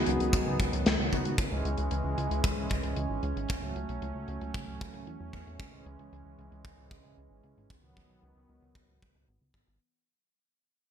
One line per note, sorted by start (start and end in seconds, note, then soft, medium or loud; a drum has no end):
0.00 1.37 D#3 medium
0.00 1.37 F#3 medium
0.00 0.57 B3 medium
0.00 1.37 B3 medium
0.00 0.57 D#4 medium
0.00 0.56 F#4 medium
0.00 0.57 G#4 medium
0.06 0.18 C#2 medium
0.06 closed hi-hat medium
0.20 0.31 C#2 medium
0.20 closed hi-hat medium
0.33 0.44 C#2 loud
0.33 kick loud
0.33 closed hi-hat medium
0.47 0.57 C#2 medium
0.60 0.70 C#2 loud
0.60 kick loud
0.60 closed hi-hat medium
0.73 0.84 C#2 medium
0.73 closed hi-hat medium
0.86 0.97 C#2 loud
0.86 snare loud
0.86 closed hi-hat loud
0.99 1.10 C#2 medium
1.12 1.23 C#2 loud
1.12 1.35 B3 medium
1.12 1.35 D#4 medium
1.12 1.35 F#4 medium
1.12 kick medium
1.12 closed hi-hat medium
1.25 1.36 C#2 medium
1.25 closed hi-hat medium
1.38 1.49 C#2 loud
1.38 3.47 E3 medium
1.38 3.47 G#3 medium
1.38 7.66 C#4 medium
1.38 kick loud
1.38 closed hi-hat medium
1.52 1.63 C#2 medium
1.65 1.76 C#2 medium
1.65 closed hi-hat medium
1.78 1.89 C#2 medium
1.78 closed hi-hat medium
1.91 2.02 C#2 loud
1.91 closed hi-hat medium
2.05 2.15 C#2 medium
2.18 2.28 C#2 loud
2.18 closed hi-hat medium
2.31 2.42 C#2 medium
2.31 closed hi-hat medium
2.44 2.55 C#2 loud
2.44 kick loud
2.44 closed hi-hat medium
2.57 2.68 C#2 medium
2.70 2.81 C#2 medium
2.70 kick medium
2.70 closed hi-hat medium
2.83 2.94 C#2 medium
2.83 closed hi-hat medium
2.96 3.07 C#2 medium
2.96 closed hi-hat medium
3.10 3.21 G#1 medium
3.23 3.34 C#2 loud
3.23 closed hi-hat medium
3.36 3.47 G#1 medium
3.36 closed hi-hat medium
3.49 3.60 C#2 loud
3.49 5.58 F#3 medium
3.49 5.58 A3 medium
3.49 kick loud
3.49 closed hi-hat medium
3.62 3.73 C#2 medium
3.76 3.86 C#2 loud
3.76 closed hi-hat medium
3.89 4.00 B1 medium
3.89 closed hi-hat medium
4.02 4.13 C#2 loud
4.02 closed hi-hat medium
4.15 4.26 C#2 medium
4.28 4.39 C#2 medium
4.28 closed hi-hat medium
4.41 4.52 C#2 medium
4.41 closed hi-hat medium
4.54 4.65 C#2 loud
4.54 kick loud
4.54 closed hi-hat loud
4.68 4.78 C#2 medium
4.81 4.92 C#2 loud
4.81 kick loud
4.81 closed hi-hat medium
4.94 5.05 C#2 medium
4.94 closed hi-hat medium
5.07 5.18 E2 loud
5.07 closed hi-hat medium
5.20 5.31 E2 medium
5.33 5.44 E2 medium
5.33 kick medium
5.33 closed hi-hat medium
5.47 5.57 E2 medium
5.47 closed hi-hat medium
5.60 5.70 C#2 loud
5.60 7.68 E3 medium
5.60 7.68 G#3 medium
5.60 kick loud
5.60 closed hi-hat medium
5.73 5.84 C#2 medium
5.86 5.97 C#2 medium
5.86 closed hi-hat medium
5.99 6.10 C#2 medium
5.99 closed hi-hat medium
6.12 6.23 C#2 loud
6.12 closed hi-hat medium
6.25 6.36 C#2 medium
6.39 6.49 C#2 medium
6.39 closed hi-hat medium
6.52 6.63 C#2 medium
6.52 closed hi-hat medium
6.65 6.76 C#2 loud
6.65 kick loud
6.65 closed hi-hat medium
6.78 6.89 C#2 medium
6.91 7.02 C#2 loud
6.91 kick loud
6.91 closed hi-hat medium
7.04 7.15 C#2 medium
7.04 closed hi-hat medium
7.18 7.28 C#2 loud
7.18 closed hi-hat medium
7.31 7.42 G#1 medium
7.44 7.55 C#2 medium
7.44 closed hi-hat medium
7.57 7.68 G#1 medium
7.57 closed hi-hat medium
7.70 7.81 C#2 loud
7.70 9.79 D#3 medium
7.70 9.79 F#3 medium
7.70 9.79 B3 medium
7.70 kick loud
7.70 closed hi-hat medium
7.83 7.94 C#2 medium
7.96 8.07 C#2 medium
7.96 kick medium
7.96 closed hi-hat medium
8.10 8.20 B1 medium
8.10 closed hi-hat medium
8.23 8.34 C#2 loud
8.23 closed hi-hat loud
8.36 8.47 C#2 medium
8.49 8.60 C#2 medium
8.49 closed hi-hat medium
8.62 8.73 C#2 medium
8.62 closed hi-hat medium
8.75 8.86 C#2 loud
8.75 kick loud
8.75 closed hi-hat medium
8.89 8.99 C#2 medium
9.02 9.13 C#2 loud
9.02 kick loud
9.02 closed hi-hat medium
9.15 9.26 C#2 medium
9.15 closed hi-hat medium
9.28 9.39 G#1 loud
9.28 closed hi-hat medium
9.41 9.52 C#2 medium
9.54 9.65 G#1 medium
9.54 kick medium
9.54 closed hi-hat medium
9.67 9.79 G#1 medium
9.67 closed hi-hat medium